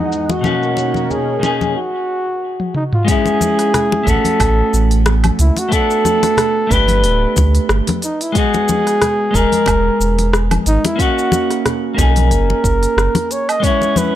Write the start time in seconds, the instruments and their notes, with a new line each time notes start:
Already playing: clean electric guitar E2 G#3 B3 D#4 G#4, analog synth pad E3 G#3 D#5 F#5, flugelhorn D#4
0.12 shaker
0.30 flugelhorn F#4, muted conga, shaker
0.41 clean electric guitar B2 A#3 C#4, analog synth pad D#4 A#4 C#5, high conga
0.45 clean electric guitar D#4 F#4, shaker
0.63 shaker
0.77 muted conga, shaker
0.94 high conga, shaker
1.11 flugelhorn G#4, low conga, shaker
1.39 clean electric guitar B2 A#3 C#4, muted conga
1.44 clean electric guitar D#4 G#4, shaker
1.61 high conga, shaker
1.77 flugelhorn F#4
2.60 high tom
2.75 flugelhorn D#4, mid tom
2.93 flugelhorn F4, mid tom
3.04 clean electric guitar G#3 B3, kick, open hi-hat
3.09 clean electric guitar C#4 E4, flugelhorn G#4, shaker
3.26 muted conga, shaker
3.41 high conga, shaker
3.59 cross-stick, open hi-hat, shaker
3.74 cross-stick, open hi-hat, low conga, shaker
3.92 muted conga
4.03 sub bass A1, clean electric guitar A3 B3, kick, open hi-hat
4.08 clean electric guitar C#4 F#4, flugelhorn A4, shaker
4.25 open hi-hat, high conga, shaker
4.40 sub bass A1, kick, open hi-hat, muted conga, low woodblock, shaker
4.73 sub bass A1, shaker
4.91 open hi-hat, shaker
5.06 cross-stick, muted conga, shaker
5.24 open hi-hat, high conga, low woodblock
5.39 sub bass C#2, flugelhorn E4, open hi-hat, shaker
5.57 flugelhorn F#4, open hi-hat, muted conga, shaker
5.69 clean electric guitar A3 B3, kick, open hi-hat
5.73 clean electric guitar D4 F#4, flugelhorn A4, shaker
5.90 shaker
6.05 high conga, shaker
6.23 cross-stick, open hi-hat, muted conga, shaker
6.37 cross-stick, open hi-hat, low conga, shaker
6.67 sub bass G1, clean electric guitar A3 B3, kick, open hi-hat
6.71 clean electric guitar D4 G4, flugelhorn B4, muted conga, shaker
6.88 open hi-hat, high conga, shaker
7.04 sub bass D1, open hi-hat, shaker
7.36 sub bass D2, kick, muted conga, shaker
7.55 open hi-hat, shaker
7.69 sub bass G1, cross-stick, shaker
7.87 open hi-hat, muted conga, high conga
8.02 flugelhorn D#4, open hi-hat, shaker
8.21 flugelhorn E4, open hi-hat, shaker
8.32 clean electric guitar G#3 B3, kick, open hi-hat, shaker
8.37 clean electric guitar D#4 F#4, flugelhorn G#4
8.54 muted conga, shaker
8.69 high conga, shaker
8.87 cross-stick, open hi-hat, shaker
9.02 cross-stick, open hi-hat, muted conga, low conga, shaker
9.31 sub bass E1, clean electric guitar G#3 B3, kick, open hi-hat
9.35 clean electric guitar D#4 G#4, flugelhorn A#4, shaker
9.52 open hi-hat, high conga, shaker
9.66 sub bass E1, kick, open hi-hat, muted conga, low woodblock, shaker
10.00 sub bass E1, shaker
10.18 open hi-hat, muted conga, shaker
10.33 cross-stick, shaker
10.51 open hi-hat, high conga, low woodblock
10.66 sub bass G#1, flugelhorn D#4, open hi-hat, shaker
10.85 flugelhorn E4, open hi-hat, muted conga, shaker
10.96 clean electric guitar A#3 C#4, kick, open hi-hat
11.00 clean electric guitar D#4 F#4, flugelhorn F#4, shaker
11.19 shaker
11.32 muted conga, high conga, shaker
11.51 cross-stick, open hi-hat, shaker
11.66 cross-stick, open hi-hat, low conga, shaker
11.94 sub bass B1, clean electric guitar A#3 C#4, kick, open hi-hat
11.99 clean electric guitar D#4 G#4, flugelhorn A#4, muted conga, shaker
12.16 open hi-hat, high conga, shaker
12.31 sub bass F#1, kick, open hi-hat, shaker
12.50 muted conga
12.64 sub bass F#1, kick, shaker
12.83 open hi-hat, shaker
12.97 sub bass F#1, cross-stick, shaker
13.15 open hi-hat, muted conga, high conga
13.31 flugelhorn C#5, open hi-hat, shaker
13.49 flugelhorn D#5, open hi-hat, low woodblock, shaker
13.60 clean electric guitar G#3 B3, analog synth pad G#3 B4 C#5 E5, kick, open hi-hat
13.64 clean electric guitar C#4 E4, flugelhorn C#5, shaker
13.81 muted conga, shaker
13.96 flugelhorn B4, high conga, shaker